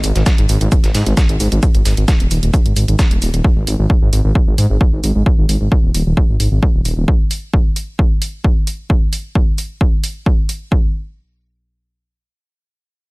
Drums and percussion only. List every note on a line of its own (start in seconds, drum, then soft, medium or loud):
0.03 open hi-hat loud
0.03 shaker medium
0.15 snare soft
0.15 closed hi-hat medium
0.26 kick loud
0.26 snare loud
0.26 closed hi-hat medium
0.26 shaker medium
0.38 closed hi-hat medium
0.49 open hi-hat loud
0.49 shaker medium
0.61 closed hi-hat medium
0.72 kick loud
0.72 closed hi-hat medium
0.72 shaker medium
0.84 snare soft
0.84 closed hi-hat medium
0.94 snare soft
0.94 open hi-hat medium
0.94 open hi-hat loud
1.06 closed hi-hat medium
1.17 kick loud
1.17 snare loud
1.17 closed hi-hat medium
1.17 shaker medium
1.29 closed hi-hat medium
1.40 open hi-hat loud
1.40 shaker medium
1.52 closed hi-hat medium
1.63 kick loud
1.63 closed hi-hat medium
1.63 shaker medium
1.75 closed hi-hat medium
1.85 snare medium
1.85 open hi-hat loud
1.85 shaker medium
1.97 closed hi-hat soft
2.08 kick loud
2.08 snare loud
2.08 closed hi-hat medium
2.08 shaker medium
2.20 closed hi-hat medium
2.31 open hi-hat loud
2.31 shaker medium
2.43 closed hi-hat soft
2.53 kick loud
2.53 closed hi-hat medium
2.53 shaker medium
2.66 closed hi-hat medium
2.76 open hi-hat loud
2.76 shaker medium
2.88 closed hi-hat medium
2.99 kick loud
2.99 snare loud
2.99 closed hi-hat medium
2.99 shaker medium
3.11 closed hi-hat soft
3.22 open hi-hat loud
3.22 shaker medium
3.34 closed hi-hat medium
3.44 kick loud
3.67 open hi-hat loud
3.90 kick loud
4.13 open hi-hat loud
4.35 kick loud
4.58 open hi-hat loud
4.81 kick loud
5.04 open hi-hat medium
5.26 kick loud
5.49 open hi-hat loud
5.72 kick loud
5.94 open hi-hat loud
6.17 kick loud
6.40 open hi-hat loud
6.63 kick loud
6.85 open hi-hat medium
7.08 kick loud
7.31 open hi-hat loud
7.54 kick loud
7.76 open hi-hat medium
7.99 kick loud
8.22 open hi-hat loud
8.44 kick loud
8.67 open hi-hat medium
8.90 kick loud
9.13 open hi-hat loud
9.35 kick loud
9.58 open hi-hat medium
9.81 kick loud
10.04 open hi-hat loud
10.26 kick loud
10.49 open hi-hat medium
10.72 kick loud